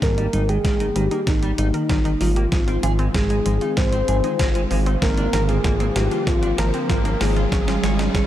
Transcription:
0.02 G#1 D#3 G3 A#3 A#4 G5, kick, snare, closed hi-hat, riser
0.18 G3 D#4, closed hi-hat
0.33 G#1 G3 D#4, closed hi-hat
0.49 D#3 G4 G#4, closed hi-hat
0.65 G#1 D#3 G3, kick, snare, closed hi-hat
0.80 D#3 A#4, closed hi-hat
0.96 G#1 D#3 G3 G4, closed hi-hat
1.11 A#3 D#4, closed hi-hat
1.27 G#1 D#3 G3 D#4, kick, snare, closed hi-hat
1.43 G3 G4, closed hi-hat
1.58 G#1 G3 D#4, closed hi-hat
1.74 D#3 A#4, closed hi-hat
1.90 G#1 D#3 G3, kick, snare, closed hi-hat
2.05 D#3 D#4, closed hi-hat
2.21 G#1 D#3 G3 F4, open hi-hat
2.36 A#3 G4, closed hi-hat
2.52 G#1 D#3 F3 G#3 C4 F4, kick, snare, closed hi-hat
2.68 C4 F4, closed hi-hat
2.83 G#1 F3 G#4, closed hi-hat
2.99 G#3 C4, closed hi-hat
3.14 G#1 F3 G#3 G#4, kick, snare, closed hi-hat
3.30 G#3 D#4, closed hi-hat
3.46 G#1 F3 G#3, closed hi-hat
3.61 D#4 F4, closed hi-hat
3.77 G#1 F3 G#3 C5, kick, snare, closed hi-hat
3.93 C4, closed hi-hat
4.08 G#1 F3 G#4, closed hi-hat
4.24 G#3 D#4, closed hi-hat
4.39 G#1 F3 G#3, kick, snare, closed hi-hat
4.55 G#3 F4, closed hi-hat
4.71 G#1 F3 G#3, open hi-hat
4.86 C4 D#4, closed hi-hat
5.02 G#1 D3 F3 A#3 A#4, kick, snare, closed hi-hat
5.17 D4, closed hi-hat
5.33 G#1 F3 A#4, snare, closed hi-hat
5.49 A#3 F4 G#4, closed hi-hat
5.64 G#1 F3 A#3, kick, snare, closed hi-hat
5.80 A#3 C4, closed hi-hat
5.96 G#1 F3 A#3 G4, snare, closed hi-hat
6.11 D4 F4, closed hi-hat
6.27 G#1 F3 A#3 F4, kick, snare, closed hi-hat
6.42 D4 F4, closed hi-hat
6.58 G#1 F3 A#4, snare, closed hi-hat
6.74 A#3 C4, closed hi-hat
6.89 G#1 F3 A#3, kick, snare, closed hi-hat
7.05 A#3 D4, closed hi-hat
7.20 G#1 F3 A#3 G#4, snare, open hi-hat
7.36 F4, closed hi-hat
7.52 G#1 D#3 F3 G#3 C#4 F4, kick, snare, closed hi-hat
7.67 C#4 F4, snare, closed hi-hat
7.83 G#1 F3 C#5, snare, closed hi-hat
7.99 C#4 D#4, snare, closed hi-hat
8.15 G#1 F3 C#4, kick, snare, closed hi-hat

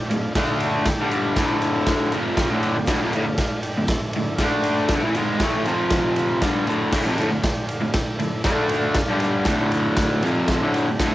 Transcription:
0.08 D2 A2 A4 D5 F5, ride, shaker
0.35 D3 A3 D4 A4 D5 F5, kick, snare, ride, shaker
0.60 A4 D5 G5, ride, shaker
0.85 A4 D5 G5, muted overdriven electric guitar stroke, kick, snare, ride, shaker
1.00 G2 D3 G3
1.11 A4 D5 F5, ride, shaker
1.36 D2 A2 D3 A4 D5 E5, kick, snare, ride, shaker
1.59 A4 D5 F5, ride, shaker
1.83 A4 D5 F5, kick, snare, ride
1.87 shaker
2.08 A4 D5 F5, ride
2.12 F2 C3 F3, shaker
2.33 A4 D5 F5
2.37 kick, snare, ride, shaker
2.50 D2 A2 D3
2.60 A4 D5 G5, ride, shaker
2.76 D2 A2
2.82 A4 D5 F5
2.86 D2 A2, kick, snare, ride, shaker
3.03 F2 C3
3.10 A4 D5 F5, ride, shaker
3.14 D2 A2
3.27 D2 A2
3.34 A4 D5 F5, kick, shaker
3.38 muted overdriven electric guitar stroke, snare, ride
3.61 A4 D5 G5, ride, shaker
3.78 D2 A2
3.86 A4 D5 E5, kick, snare, ride, shaker
4.09 A4 D5 E5
4.13 D2 A2, ride
4.35 A4 D5 F5, kick, snare, ride, shaker
4.41 D3 A3 D4
4.60 A4 D5 G5, ride
4.65 shaker
4.87 A4 D5 E5, kick, snare, ride, shaker
4.92 G2 D3
5.04 A2 E3
5.12 G#2 A4 D5 F5, ride, shaker
5.17 D#3 G#3
5.37 A4 D5 G5, kick, snare, ride
5.41 A2 E3 A3, shaker
5.64 F2 C3 F3 F4 C5 F5, ride, shaker
5.90 kick, snare, ride, shaker
6.15 F4 C5 F5, ride, shaker
6.41 G2 D3 G3 A4 D5 F5, kick, snare, ride, shaker
6.67 D2 A2 D3 A4 D5 E5, ride, shaker
6.92 D2 A2 A4 D5 F5, kick, snare, crash, shaker
7.06 F2 C3
7.17 D2 A2 A4 D5 F5, ride, shaker
7.31 D2 A2
7.42 A4 D5 G5, muted overdriven electric guitar stroke, kick, snare, ride, shaker
7.67 A4 D5 F5, ride, shaker
7.81 D2 A2
7.93 A4 D5 G5, kick, snare, ride, shaker
8.17 D2 A2 A4 D5 E5, ride
8.22 shaker
8.44 D3 A3 D4 A4 D5 F5, kick, snare, ride, shaker
8.69 A4, ride
8.73 D5 F5, shaker
8.94 A4 D5 F5, muted overdriven electric guitar stroke, kick, snare, ride, shaker
9.09 G2 D3 G3
9.20 D5, ride, shaker
9.24 A4 F5
9.45 D2 A2 D3 A4, kick, snare, ride, shaker
9.49 D5 G5
9.72 ride, shaker
9.77 A4 D5 F5
9.97 A4, kick, snare, ride, shaker
10.02 D5 F5
10.22 F2 C3 F3 A4 D5 F5, ride, shaker
10.48 A4 D5 E5, kick, snare, ride, shaker
10.62 D2 A2 D3
10.74 A4 D5 G5, ride, shaker
10.87 D2 A2
11.00 D2 A2 A4 D5 E5, kick, snare, ride, shaker

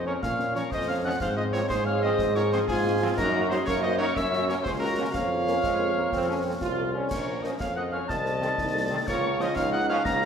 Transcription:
Already playing: F2 C#4
0.06 F3 A#3 C#4 A#4 C#5 C#6
0.21 A#2 C#5 F5 F6, concert bass drum, snare
0.39 F3 A#3 C#4, snare
0.54 F3 A#3 C#4 A#4 C#5 C#6, snare
0.71 F2 C5 D#5 D#6, concert bass drum, snare
0.87 F3 A#3 C#4 C#5 F5 F6
1.03 F3 A#3 C#4 D#5 F#5 F#6
1.20 G#2 C4 C5 F5 F6, concert bass drum, snare, crash
1.36 G#3 C4 F4 C5 D#5 D#6
1.53 F3 G#3 C4 F4 A#4 C#5 C#6, snare
1.69 G#2 G#4 C5 C6, concert bass drum, snare
1.85 G#3 C4 F4 C#5 F5 F6
2.02 F3 G#3 C4 F4 C5 D#5 D#6
2.19 G#2, concert bass drum, snare
2.35 G#3 C4 F4 A#4 C#5 C#6, snare
2.52 F3 G#3 C4 F4 G#4 C5 C6, snare
2.68 G#2 F4 G#4 G#5, concert bass drum, snare
2.86 G#3 C4 F4
3.01 F3 G#3 C4 F4
3.17 F#2 D#4 F#4 A#4 A#5, concert bass drum, snare, crash
3.34 A#3 D#4 F#4
3.50 F#3 A#3 D#4 F#4 G#4 C5 C6, snare
3.65 F#2 A#3 A#4 C#5 C#6, concert bass drum, snare
3.82 A#3 D#4 F#4 C5 D#5 D#6
3.98 F#3 A#3 D#4 F#4 A#4 C#5 C#6
4.15 F#2 C#4 C#5 E5 E6, concert bass drum, snare
4.33 A#3 C#4 F#4, snare
4.48 A#3 C#4 F#4 A#4 C#5 C#6, snare
4.63 C#2 G#4 C5 C6, concert bass drum, snare
4.80 A#3 C#4 F#4 A#4 A#5
4.98 A#3 C#4 F#4
5.12 F2 F4 C#5 F5 F6, concert bass drum, snare, crash
5.31 A#3 C#4 A#4
5.47 A#3 C#4 A#4, snare
5.62 F2 G#3, concert bass drum, snare
5.80 A#3 C#4 A#4
5.95 A#3 C#4 A#4
6.12 F2 C4, concert bass drum, snare
6.28 C4 C#4 F4 A4
6.45 C4 F4 A4
6.61 C2 F4, concert bass drum, snare
6.78 C4 F4 A4
6.93 C4 C#4 F4 A4
7.10 A#1 A#4 C#5 C#6, concert bass drum, snare, crash
7.27 C#4 F4 A#4
7.42 F3 C#4 F4 A#4 C5 D#5 D#6, snare
7.59 F2 C#4 C#5 F5 F6, concert bass drum, snare
7.76 C#4 F4 A#4 D#5 F#5 F#6
7.91 F3 C#4 F4 A#4 C#5 F5 F6
8.08 C2 C4 D#5 A5 A6, concert bass drum, snare
8.25 C4 D#4 A4, snare
8.41 D#3 C4 D#4 A4, snare
8.58 C2 D#4, concert bass drum, snare
8.74 C4 D#4 A4
8.90 D#3 C4 D#4 A4
9.07 C#2 F4 A#4 C#5 C#6, concert bass drum, snare, crash
9.23 A#3 C#4 F4
9.39 F3 A#3 C#4 F4 C5 D#5 D#6, snare
9.55 C#2 D#4 C#5 F5 F6, concert bass drum, snare
9.72 A#3 C#4 F4 D#5 F#5 F#6
9.89 F3 A#3 C#4 F4 C#5 F5 F6
10.05 C#2 C#4 F5 A#5 A#6, concert bass drum, snare
10.22 A#3 C#4 F4, snare

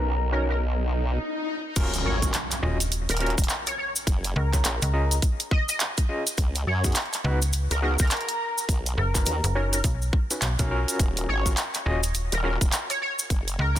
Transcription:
Already playing: B1 B3 F#4 A#4 C#5 D#5 G#5
0.15 A#5
0.32 C#4 D#4 F#4 A#4 C#5
0.49 A#4
0.61 swell
1.76 D#1 C#4 F4 F#4 A#4, kick, cross-stick, closed hi-hat, crash, impact, cabasa
1.94 closed hi-hat, cabasa
2.05 G#1 C#5
2.22 C#4 F4 F#4 A#4, kick, closed hi-hat, cabasa
2.34 clap, closed hi-hat, cabasa
2.51 clap, closed hi-hat, cabasa
2.63 D#1 C#4 F4 F#4 D#5
2.80 closed hi-hat, cabasa
2.92 closed hi-hat, cabasa
3.09 D#1 A#4, closed hi-hat, cabasa
3.11 closed hi-hat
3.17 C#4 F4 F#4 A#4, closed hi-hat
3.20 A#4, closed hi-hat
3.26 closed hi-hat
3.30 closed hi-hat
3.38 D#1, kick, closed hi-hat, cabasa
3.44 closed hi-hat
3.49 clap, cabasa
3.67 C#5, closed hi-hat, cabasa
3.78 C#5
3.96 cabasa
4.07 F#1, kick, cross-stick, closed hi-hat, cabasa
4.24 closed hi-hat, cabasa
4.36 C#2 A#4
4.53 C#4 F4 G#4 C#5, kick, clap, closed hi-hat, cabasa
4.64 A#1, clap, closed hi-hat, cabasa
4.82 C#2, closed hi-hat, cabasa
4.93 C#4 F4 G#4 D#5
5.11 closed hi-hat, cabasa
5.22 kick, closed hi-hat, cabasa
5.40 closed hi-hat, cabasa
5.51 D#5, kick
5.69 D#5, closed hi-hat, cabasa
5.80 clap, closed hi-hat, cabasa
5.97 kick, closed hi-hat, cabasa
6.09 C#4 F4 G#4 D#5
6.27 closed hi-hat, cabasa
6.38 C#2, kick, cross-stick, closed hi-hat, cabasa
6.55 closed hi-hat, cabasa
6.67 F#2 C#5
6.84 B3 D#4 F#4 G#4, kick, closed hi-hat, cabasa
6.86 closed hi-hat
6.92 clap, closed hi-hat, cabasa
6.96 closed hi-hat
7.02 closed hi-hat
7.05 closed hi-hat
7.13 clap, closed hi-hat, cabasa
7.24 C#2 B3 D#4 F#4 B4
7.42 closed hi-hat, cabasa
7.53 closed hi-hat, cabasa
7.71 C#2 A#4, closed hi-hat, cabasa
7.82 B3 D#4 F#4 G#4 A#4
7.99 C#2 A#4, kick, closed hi-hat, cabasa
8.02 closed hi-hat
8.07 clap, closed hi-hat, cabasa
8.11 closed hi-hat
8.17 closed hi-hat
8.21 closed hi-hat
8.28 closed hi-hat, cabasa
8.58 cabasa
8.69 B1, kick, cross-stick, closed hi-hat, cabasa
8.86 closed hi-hat, cabasa
8.97 F#1 A#4
9.15 C#4 D#4 F#4 B4, kick, clap, closed hi-hat, cabasa
9.26 D#2, closed hi-hat, cabasa
9.44 F#1, closed hi-hat, cabasa
9.55 C#4 D#4 F#4 A#4 C#5
9.73 A#4, closed hi-hat, cabasa
9.84 B1, kick, closed hi-hat, cabasa
10.02 cabasa
10.13 kick
10.31 C#4 D#4 F#4 B4, closed hi-hat, cabasa
10.42 B1, clap, closed hi-hat, cabasa
10.59 B1 C#4 D#4 F#4 A#4, kick, closed hi-hat, cabasa
10.71 C#4 F4 F#4 A#4
10.88 closed hi-hat, cabasa
10.99 D#1, kick, cross-stick, closed hi-hat, cabasa
11.17 closed hi-hat, cabasa
11.29 G#1 C#5
11.46 C#4 F4 F#4 A#4, kick, closed hi-hat, cabasa
11.57 clap, closed hi-hat, cabasa
11.74 clap, closed hi-hat, cabasa
11.86 D#1 C#4 F4 F#4 D#5
12.03 closed hi-hat, cabasa
12.15 closed hi-hat, cabasa
12.32 D#1 A#4, closed hi-hat, cabasa
12.44 C#4 F4 F#4 A#4
12.61 D#1, kick, closed hi-hat, cabasa
12.72 clap, closed hi-hat, cabasa
12.90 C#5, closed hi-hat, cabasa
13.02 C#5
13.19 cabasa
13.30 F#1, kick, cross-stick, closed hi-hat, cabasa
13.48 closed hi-hat, cabasa
13.59 C#2 A#4

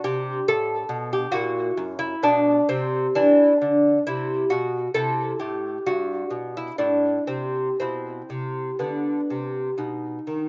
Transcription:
Already playing: D4
0.04 C3 G4
0.48 A2 A4
0.89 B2
1.13 G4
1.32 A#2 E4 F#4
1.77 F#2
1.99 E4
2.23 B2 D4
2.69 C3 C4
3.15 E3 D4
3.62 D3
4.07 C3 E4
4.50 B2 F#4
4.94 C3 E4 A4
5.40 A2 G4
5.86 G2 F#4
6.30 B2
6.57 E4
6.78 A2 D4 E4
7.27 C3 C4
7.80 B2 C4 E4
8.30 C3
8.79 D3 B3
9.30 C3
9.78 B2 D#4
10.27 D#3

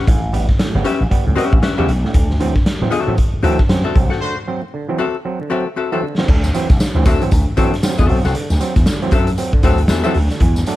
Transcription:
0.07 A1 A2, kick, closed hi-hat
0.33 A1 G3 B3, closed hi-hat
0.49 kick, snare
0.59 A2, snare, closed hi-hat
0.74 G1 C#3 G3 B3
0.84 G3 B3 C#4 G4 B4 E5, closed hi-hat
1.00 A1
1.11 G3 B3, muted slap bass stroke, kick, closed hi-hat
1.27 C#2 A2
1.35 G3 B3 C#4 G4 B4 E5, closed hi-hat
1.52 A1, kick
1.62 C#4 G4 B4 E5, snare, closed hi-hat
1.78 E2 C#3 G3 B3 C#4 G4 B4 E5
1.88 B1, closed hi-hat
2.05 C#2 A2, snare
2.14 D2 D3, kick, closed hi-hat
2.30 F#3 C4, snare
2.40 D2 E3 F#3 C4, closed hi-hat
2.56 kick, snare
2.66 snare, closed hi-hat
2.82 A2 E3 F#3 C4
2.91 D3 C4 F#4 A4 E5, closed hi-hat
3.08 A2 E3 F#3 C4
3.18 kick, closed hi-hat
3.33 muted slap bass stroke
3.43 D2 E3 F#3 C4 F#4 A4 E5, closed hi-hat
3.59 kick, snare
3.69 F#2 F#3 C4, snare, closed hi-hat
3.84 D3 C4 F#4 A4 E5
3.95 C2 F#3 C4, kick, closed hi-hat
4.10 C4 F#4 A4 F#5, snare
4.21 D3 A3 F#4 C5
4.48 F#3 C4
4.74 D3
4.89 E3 F#3 C4
4.98 F#3 C4 F#4 A4 E5
5.25 F#3 C4
5.41 D3
5.50 F#3 C4 F#4 A4 E5
5.76 C4 F#4 A4 E5
5.92 E3 F#3 C4 F#4 A4 E5
6.03 D3
6.18 E3 F#3 C4, snare
6.28 D2 D3, kick, crash
6.44 F#3 C4, snare, tambourine
6.54 E3 F#3 C4, closed hi-hat, tambourine
6.70 C2, kick, snare, closed hi-hat, tambourine
6.80 muted slap bass stroke, snare, tambourine
6.95 D2 E3 F#3 C4
7.05 D3 C4 F#4 A4 E5, kick, closed hi-hat, tambourine
7.21 E3 F#3 C4, closed hi-hat, tambourine
7.31 D2, kick, closed hi-hat, tambourine
7.57 D3 E3 F#3 C4 F#4 A4 E5, kick, closed hi-hat, tambourine
7.74 snare, closed hi-hat
7.83 F#3 C4, snare, tambourine
7.98 E2 D3 C4 F#4 A4 E5, kick, closed hi-hat, tambourine
8.09 B1 F#3 C4, open hi-hat
8.24 C2 C4 F#4 A4 F#5, snare, closed hi-hat, tambourine
8.35 D3, closed hi-hat
8.50 D2, snare, tambourine
8.60 F#3 C4, closed hi-hat, tambourine
8.76 E2, kick, snare, closed hi-hat, tambourine
8.86 D3, snare, tambourine
9.02 E3 F#3 C4, closed hi-hat
9.11 F#2 F#3 C4 F#4 A4 E5, kick, closed hi-hat, tambourine
9.27 closed hi-hat, tambourine
9.38 F#3 C4, closed hi-hat, tambourine
9.53 D3, kick
9.62 D2 F#3 C4 F#4 A4 E5, kick, snare, closed hi-hat, tambourine
9.78 closed hi-hat
9.88 E2 C4 F#4 A4 E5, snare, tambourine
10.04 E3 F#3 C4 F#4 A4 E5, tambourine
10.14 D2, open hi-hat
10.30 D3, snare, closed hi-hat, tambourine
10.40 E2 E3, kick, closed hi-hat
10.56 A3 D4, snare, tambourine
10.66 F#3 A3 D4, closed hi-hat, tambourine

